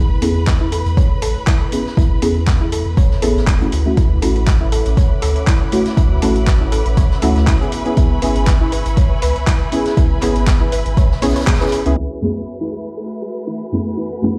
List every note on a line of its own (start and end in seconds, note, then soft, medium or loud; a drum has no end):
0.00 0.18 A1 loud
0.00 3.96 B4 medium
0.00 3.96 B5 medium
0.21 0.82 E2 loud
0.21 1.69 B3 medium
0.21 1.69 C#4 medium
0.21 1.70 E4 medium
0.21 1.70 G#4 medium
0.21 0.35 A4 medium
0.21 closed hi-hat medium
0.21 open hi-hat loud
0.47 kick loud
0.47 snare loud
0.47 clap loud
0.47 closed hi-hat medium
0.61 0.68 E4 loud
0.72 0.81 A4 medium
0.72 closed hi-hat medium
0.72 open hi-hat loud
0.86 0.95 E2 loud
0.86 closed hi-hat soft
0.97 1.06 C#5 medium
0.97 kick loud
0.97 closed hi-hat medium
1.22 1.34 A1 medium
1.22 1.27 A4 loud
1.22 closed hi-hat medium
1.22 open hi-hat loud
1.47 1.60 E4 medium
1.47 kick loud
1.47 snare loud
1.47 clap loud
1.47 closed hi-hat medium
1.72 2.19 B3 medium
1.72 2.20 C#4 medium
1.72 2.20 E4 medium
1.72 2.20 G#4 medium
1.72 closed hi-hat medium
1.72 open hi-hat loud
1.86 snare soft
1.97 2.18 A1 loud
1.97 2.06 E4 medium
1.97 kick loud
1.97 closed hi-hat medium
2.22 2.82 E2 loud
2.22 2.40 B3 medium
2.22 2.40 C#4 medium
2.22 2.40 E4 medium
2.22 2.40 G#4 medium
2.22 2.35 A4 medium
2.22 closed hi-hat medium
2.22 open hi-hat loud
2.47 kick loud
2.47 snare loud
2.47 clap loud
2.47 closed hi-hat medium
2.61 2.68 E4 loud
2.72 2.81 A4 medium
2.72 closed hi-hat medium
2.72 open hi-hat loud
2.86 2.95 E2 loud
2.97 3.09 E1 medium
2.97 3.06 C#5 medium
2.97 kick loud
2.97 closed hi-hat medium
3.11 snare soft
3.22 3.33 A1 loud
3.22 3.57 B3 medium
3.22 3.58 C#4 medium
3.22 3.58 E4 medium
3.22 3.58 G#4 loud
3.22 3.28 A4 loud
3.22 closed hi-hat medium
3.22 open hi-hat loud
3.36 3.45 A1 medium
3.36 snare soft
3.47 3.58 E1 medium
3.47 3.60 E4 medium
3.47 kick loud
3.47 snare loud
3.47 clap loud
3.47 closed hi-hat medium
3.61 3.82 A3 medium
3.61 3.83 C#4 medium
3.61 3.83 E4 medium
3.61 3.83 F#4 medium
3.61 closed hi-hat soft
3.72 3.84 D2 medium
3.72 closed hi-hat medium
3.72 open hi-hat loud
3.85 4.02 A3 medium
3.85 4.02 C#4 medium
3.85 4.02 E4 medium
3.85 4.02 F#4 medium
3.97 4.18 D2 loud
3.97 7.69 C#4 medium
3.97 4.06 E4 medium
3.97 11.96 B4 medium
3.97 11.93 E5 medium
3.97 7.69 F#5 medium
3.97 11.96 B5 medium
3.97 7.69 D6 medium
3.97 kick loud
3.97 closed hi-hat medium
4.21 4.82 A1 loud
4.21 5.69 A3 medium
4.21 5.69 C#4 medium
4.21 5.70 E4 medium
4.21 5.70 F#4 medium
4.21 4.35 A4 medium
4.21 closed hi-hat medium
4.21 open hi-hat loud
4.36 closed hi-hat soft
4.47 kick loud
4.47 snare loud
4.47 clap loud
4.47 closed hi-hat medium
4.61 4.68 E4 loud
4.72 4.81 A4 medium
4.72 closed hi-hat medium
4.72 open hi-hat loud
4.86 4.95 A1 loud
4.86 closed hi-hat soft
4.97 5.06 C#5 medium
4.97 kick loud
4.97 closed hi-hat medium
5.22 5.34 D2 medium
5.22 5.28 A4 loud
5.22 closed hi-hat medium
5.22 open hi-hat loud
5.36 closed hi-hat soft
5.47 5.60 E4 medium
5.47 kick loud
5.47 snare loud
5.47 clap loud
5.47 closed hi-hat medium
5.72 6.19 A3 medium
5.72 6.20 C#4 medium
5.72 6.20 E4 medium
5.72 6.20 F#4 medium
5.72 closed hi-hat medium
5.72 open hi-hat loud
5.86 snare soft
5.86 closed hi-hat soft
5.97 6.18 D2 medium
5.97 6.06 E4 medium
5.97 kick loud
5.97 closed hi-hat medium
6.22 6.82 A1 loud
6.22 6.40 A3 medium
6.22 6.40 C#4 medium
6.22 6.40 E4 medium
6.22 6.40 F#4 medium
6.22 6.35 A4 medium
6.22 closed hi-hat medium
6.22 open hi-hat loud
6.36 closed hi-hat medium
6.47 kick loud
6.47 snare loud
6.47 clap loud
6.47 closed hi-hat medium
6.61 6.68 E4 loud
6.72 6.81 A4 medium
6.72 closed hi-hat medium
6.72 open hi-hat loud
6.86 6.95 A1 loud
6.86 closed hi-hat medium
6.97 7.08 A1 medium
6.97 7.06 C#5 medium
6.97 kick loud
6.97 closed hi-hat medium
7.11 snare soft
7.22 7.33 D2 loud
7.22 7.57 A3 medium
7.22 7.58 C#4 medium
7.22 7.58 E4 medium
7.22 7.58 F#4 loud
7.22 7.28 A4 loud
7.22 closed hi-hat medium
7.22 open hi-hat loud
7.36 7.45 D2 medium
7.36 snare soft
7.36 closed hi-hat medium
7.47 7.60 E4 medium
7.47 kick loud
7.47 snare loud
7.47 clap loud
7.47 closed hi-hat medium
7.60 7.82 B3 medium
7.60 7.83 C#4 medium
7.60 7.83 E4 medium
7.60 7.83 G#4 medium
7.60 closed hi-hat soft
7.72 11.93 B4 medium
7.72 11.93 G#5 medium
7.72 9.70 C#6 medium
7.72 closed hi-hat medium
7.72 open hi-hat loud
7.85 8.02 B3 medium
7.85 8.02 C#4 medium
7.85 8.02 E4 medium
7.85 8.02 G#4 medium
7.85 closed hi-hat medium
7.97 8.18 C#2 loud
7.97 8.06 E4 medium
7.97 kick loud
7.97 closed hi-hat medium
8.21 8.82 G#1 loud
8.21 9.69 B3 medium
8.21 9.69 C#4 medium
8.21 9.70 E4 medium
8.21 9.70 G#4 medium
8.21 8.35 B4 medium
8.21 closed hi-hat medium
8.21 open hi-hat loud
8.36 closed hi-hat medium
8.47 kick loud
8.47 snare loud
8.47 clap loud
8.47 closed hi-hat medium
8.61 8.68 E4 loud
8.72 8.81 B4 medium
8.72 closed hi-hat medium
8.72 open hi-hat loud
8.86 8.95 G#1 loud
8.86 closed hi-hat medium
8.86 closed hi-hat soft
8.97 9.06 C#5 medium
8.97 kick loud
8.97 closed hi-hat medium
9.22 9.34 C#2 medium
9.22 9.28 B4 loud
9.22 closed hi-hat medium
9.22 open hi-hat loud
9.36 closed hi-hat medium
9.47 9.60 E4 medium
9.47 kick loud
9.47 snare loud
9.47 clap loud
9.47 closed hi-hat medium
9.72 10.19 B3 medium
9.72 10.19 C#4 medium
9.72 10.20 E4 medium
9.72 10.20 G#4 medium
9.72 11.95 B5 medium
9.72 closed hi-hat medium
9.72 open hi-hat loud
9.86 snare soft
9.86 closed hi-hat medium
9.97 10.18 C#2 loud
9.97 10.06 E4 medium
9.97 kick loud
9.97 closed hi-hat medium
10.22 10.82 G#1 loud
10.22 10.40 B3 medium
10.22 10.40 C#4 medium
10.22 10.40 E4 medium
10.22 10.40 G#4 medium
10.22 10.35 B4 medium
10.22 clap soft
10.22 closed hi-hat medium
10.22 open hi-hat loud
10.36 closed hi-hat medium
10.47 kick loud
10.47 snare loud
10.47 clap loud
10.47 closed hi-hat medium
10.61 10.68 E4 loud
10.72 10.81 B4 medium
10.72 closed hi-hat medium
10.72 open hi-hat loud
10.86 10.95 G#1 loud
10.86 closed hi-hat medium
10.97 11.24 G#1 medium
10.97 11.06 C#5 medium
10.97 kick loud
10.97 closed hi-hat medium
11.11 snare soft
11.22 11.34 B1 medium
11.22 11.57 B3 medium
11.22 11.57 C#4 medium
11.22 11.58 E4 medium
11.22 11.58 G#4 loud
11.22 11.28 C#5 loud
11.22 snare loud
11.22 closed hi-hat medium
11.22 open hi-hat loud
11.29 snare medium
11.29 closed hi-hat medium
11.36 11.40 C#5 medium
11.36 snare medium
11.36 closed hi-hat medium
11.41 snare medium
11.41 closed hi-hat medium
11.47 11.56 G#4 loud
11.47 kick loud
11.47 snare medium
11.47 clap loud
11.47 closed hi-hat medium
11.54 snare medium
11.54 closed hi-hat medium
11.60 11.82 B3 medium
11.60 11.83 C#4 medium
11.60 11.83 E4 medium
11.60 11.83 G#4 medium
11.60 11.65 B4 medium
11.60 snare medium
11.60 closed hi-hat medium
11.67 snare medium
11.67 closed hi-hat medium
11.72 closed hi-hat medium
11.72 open hi-hat loud
11.86 11.95 C#2 medium
11.86 11.96 B3 medium
11.86 11.96 C#4 medium
11.86 11.96 E4 medium
11.86 11.96 G#4 medium
11.86 closed hi-hat medium
11.97 14.38 A3 medium
11.97 12.06 E4 medium
11.97 14.38 F#4 medium
11.97 14.38 B4 medium
11.97 13.95 E5 medium
11.97 14.38 G#5 medium
11.97 14.38 B5 medium
12.21 13.69 F#2 medium
12.21 13.69 A3 medium
12.21 13.69 B3 medium
12.21 13.70 C#4 medium
12.21 13.70 E4 medium
12.21 12.35 G#4 medium
12.21 13.70 G#4 medium
12.61 12.68 E4 loud
12.72 12.81 G#4 medium
12.97 13.06 A4 medium
13.22 13.28 G#4 loud
13.47 13.60 E4 medium
13.72 14.19 F#2 medium
13.72 14.19 A3 medium
13.72 14.20 B3 medium
13.72 14.20 C#4 medium
13.72 14.20 E4 medium
13.72 14.20 G#4 medium
13.97 14.06 E4 medium
13.97 14.38 F#5 medium
14.22 14.38 F#2 medium
14.22 14.38 A3 medium
14.22 14.38 B3 medium
14.22 14.38 C#4 medium
14.22 14.38 E4 medium
14.22 14.35 G#4 medium
14.22 14.38 G#4 medium